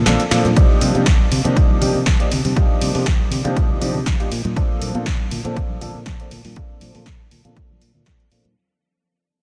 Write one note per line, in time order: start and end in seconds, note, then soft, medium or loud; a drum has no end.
0.06 0.16 A#1 medium
0.06 0.21 F3 medium
0.06 0.21 A#3 medium
0.06 0.21 C4 medium
0.06 0.21 D4 medium
0.06 0.21 A4 medium
0.06 snare loud
0.06 closed hi-hat medium
0.06 high conga medium
0.06 shaker medium
0.06 shaker soft
0.20 closed hi-hat medium
0.20 shaker soft
0.31 0.41 A#2 loud
0.31 0.46 F3 medium
0.31 0.46 A#3 medium
0.31 0.46 C4 medium
0.31 0.46 D4 medium
0.31 0.46 A4 medium
0.31 snare medium
0.31 open hi-hat loud
0.31 shaker loud
0.31 shaker medium
0.45 0.53 A#2 loud
0.45 closed hi-hat soft
0.45 high conga medium
0.45 shaker soft
0.56 0.66 C2 loud
0.56 0.91 F3 medium
0.56 0.92 A#3 medium
0.56 0.92 D4 medium
0.56 0.92 D#4 medium
0.56 0.92 G4 medium
0.56 kick loud
0.56 closed hi-hat medium
0.69 shaker soft
0.81 0.91 C3 medium
0.81 open hi-hat loud
0.81 high conga medium
0.81 shaker loud
0.94 1.08 C3 medium
0.94 1.03 F3 medium
0.94 1.03 A#3 medium
0.94 1.03 D4 medium
0.94 1.03 D#4 medium
0.94 1.03 G4 medium
0.94 closed hi-hat soft
0.94 shaker soft
1.06 1.16 C2 loud
1.06 kick loud
1.06 snare loud
1.06 closed hi-hat medium
1.19 high conga medium
1.19 shaker soft
1.31 1.41 C3 medium
1.31 open hi-hat loud
1.31 low conga medium
1.31 shaker loud
1.44 1.58 C3 loud
1.44 1.78 F3 medium
1.44 1.78 A#3 medium
1.44 1.79 D4 medium
1.44 1.79 D#4 medium
1.44 1.79 G4 medium
1.44 closed hi-hat medium
1.44 shaker soft
1.57 1.75 C2 loud
1.57 kick loud
1.57 closed hi-hat medium
1.57 shaker medium
1.69 high conga medium
1.69 shaker soft
1.81 1.91 C3 medium
1.81 1.96 F3 medium
1.81 1.96 A#3 medium
1.81 1.96 D4 medium
1.81 1.96 D#4 medium
1.81 1.96 G4 loud
1.81 open hi-hat loud
1.81 low conga medium
1.81 shaker medium
1.95 2.03 C3 medium
1.95 shaker soft
2.06 2.16 C2 medium
2.06 kick loud
2.06 snare loud
2.06 closed hi-hat medium
2.06 high conga medium
2.06 shaker medium
2.19 2.28 F3 medium
2.19 2.28 A#3 medium
2.19 2.28 D4 medium
2.19 2.28 D#4 medium
2.19 2.28 G4 medium
2.19 closed hi-hat medium
2.31 2.41 C3 loud
2.31 open hi-hat loud
2.31 low conga loud
2.31 shaker medium
2.45 2.53 C3 loud
2.45 open hi-hat medium
2.45 high conga medium
2.45 shaker soft
2.56 2.66 C2 medium
2.56 2.91 F3 medium
2.56 2.91 A#3 medium
2.56 2.92 D4 medium
2.56 2.92 D#4 medium
2.56 2.92 G4 medium
2.56 kick loud
2.56 closed hi-hat medium
2.69 shaker soft
2.81 2.91 C3 medium
2.81 open hi-hat loud
2.81 high conga medium
2.81 shaker loud
2.94 3.08 C3 medium
2.94 3.03 F3 medium
2.94 3.03 A#3 medium
2.94 3.03 D4 medium
2.94 3.03 D#4 medium
2.94 3.03 G4 medium
2.94 open hi-hat medium
2.94 shaker soft
3.06 3.16 C2 loud
3.06 kick loud
3.06 snare loud
3.20 high conga medium
3.20 shaker soft
3.31 3.41 C3 medium
3.31 open hi-hat loud
3.31 low conga medium
3.31 shaker medium
3.44 3.58 C3 loud
3.44 3.78 F3 medium
3.44 3.78 A#3 medium
3.44 3.79 D4 medium
3.44 3.79 D#4 medium
3.44 3.79 G4 medium
3.44 closed hi-hat medium
3.44 shaker soft
3.57 3.75 C2 medium
3.57 kick loud
3.57 closed hi-hat medium
3.70 high conga medium
3.70 low conga medium
3.70 shaker soft
3.81 3.91 C3 medium
3.81 3.96 F3 medium
3.81 3.96 A#3 medium
3.81 3.96 D4 medium
3.81 3.96 D#4 medium
3.81 3.96 G4 medium
3.81 open hi-hat loud
3.81 shaker medium
3.94 4.03 C3 medium
3.94 low conga medium
3.94 shaker soft
4.06 4.16 C2 medium
4.06 kick loud
4.06 snare loud
4.06 closed hi-hat medium
4.06 high conga medium
4.06 shaker medium
4.19 4.28 F3 medium
4.19 4.28 A#3 medium
4.19 4.28 D4 medium
4.19 4.28 D#4 medium
4.19 4.28 G4 medium
4.19 closed hi-hat medium
4.19 shaker soft
4.31 4.41 A#2 loud
4.31 open hi-hat loud
4.31 shaker medium
4.44 4.53 A#2 loud
4.44 closed hi-hat soft
4.44 high conga loud
4.44 shaker soft
4.56 4.66 A#1 loud
4.56 4.91 F3 medium
4.56 4.91 A#3 medium
4.56 4.92 C4 medium
4.56 4.92 D4 medium
4.56 4.92 A4 medium
4.56 kick loud
4.56 closed hi-hat medium
4.56 shaker soft
4.70 shaker soft
4.81 4.91 A#2 medium
4.81 open hi-hat loud
4.81 high conga medium
4.81 shaker medium
4.94 5.08 A#2 medium
4.94 5.03 F3 medium
4.94 5.03 A#3 medium
4.94 5.03 C4 medium
4.94 5.03 D4 medium
4.94 5.03 A4 medium
4.94 closed hi-hat soft
4.94 shaker soft
5.06 5.16 A#1 loud
5.06 kick loud
5.06 snare loud
5.06 closed hi-hat medium
5.19 high conga medium
5.19 shaker soft
5.31 5.41 A#2 medium
5.31 open hi-hat loud
5.31 low conga medium
5.31 shaker medium
5.44 5.58 A#2 medium
5.44 5.78 F3 medium
5.44 5.78 A#3 medium
5.44 5.79 C4 medium
5.44 5.79 D4 medium
5.44 5.79 A4 medium
5.44 closed hi-hat soft
5.44 shaker soft
5.56 5.75 A#1 loud
5.56 kick loud
5.56 closed hi-hat medium
5.69 high conga medium
5.69 shaker soft
5.81 5.91 A#2 medium
5.81 5.96 F3 medium
5.81 5.96 A#3 medium
5.81 5.96 C4 medium
5.81 5.96 D4 medium
5.81 5.96 A4 medium
5.81 open hi-hat loud
5.81 low conga medium
5.81 shaker medium
5.95 6.03 A#2 medium
5.95 shaker soft
6.06 6.16 A#1 medium
6.06 kick loud
6.06 snare loud
6.06 closed hi-hat medium
6.06 high conga medium
6.06 shaker soft
6.20 6.28 F3 medium
6.20 6.28 A#3 medium
6.20 6.28 C4 medium
6.20 6.28 D4 medium
6.20 6.28 A4 medium
6.20 closed hi-hat soft
6.20 shaker soft
6.31 6.41 A#2 medium
6.31 open hi-hat loud
6.31 low conga medium
6.31 shaker medium
6.45 6.53 A#2 loud
6.45 open hi-hat medium
6.45 high conga medium
6.45 shaker soft
6.56 6.91 F3 medium
6.56 6.92 A#3 medium
6.56 6.92 C4 medium
6.56 6.92 D4 medium
6.56 6.92 A4 medium
6.56 kick loud
6.56 closed hi-hat medium
6.56 shaker soft
6.70 shaker soft
6.81 6.91 A#2 medium
6.81 open hi-hat loud
6.81 high conga medium
6.81 shaker medium
6.94 7.08 A#2 medium
6.94 7.03 F3 medium
6.94 7.03 A#3 medium
6.94 7.03 C4 medium
6.94 7.03 D4 medium
6.94 7.03 A4 medium
6.94 open hi-hat medium
6.94 shaker soft
7.06 kick loud
7.06 snare loud
7.06 closed hi-hat medium
7.20 high conga medium
7.20 shaker soft
7.31 7.41 A#2 medium
7.31 open hi-hat loud
7.31 low conga medium
7.31 shaker medium
7.45 7.58 A#2 medium
7.45 7.78 F3 medium
7.45 7.79 A#3 medium
7.45 7.79 C4 medium
7.45 7.79 D4 medium
7.45 7.79 A4 medium
7.45 closed hi-hat soft
7.57 kick loud
7.57 closed hi-hat medium
7.70 high conga medium
7.70 low conga medium
7.70 shaker soft
7.81 7.91 A#2 medium
7.81 open hi-hat loud
7.81 shaker loud
7.94 8.03 A#2 medium
7.94 low conga medium
7.94 shaker soft
8.06 8.21 F3 medium
8.06 8.21 A#3 medium
8.06 8.21 C4 medium
8.06 8.21 D4 medium
8.06 8.21 A4 medium
8.06 kick loud
8.06 snare loud
8.06 closed hi-hat medium
8.20 closed hi-hat soft
8.20 shaker soft
8.31 8.41 A#2 medium
8.31 8.46 F3 medium
8.31 8.46 A#3 medium
8.31 8.46 C4 medium
8.31 8.46 D4 medium
8.31 8.46 A4 medium
8.31 open hi-hat loud
8.45 8.53 A#2 medium
8.45 closed hi-hat soft
8.45 high conga loud
8.45 shaker soft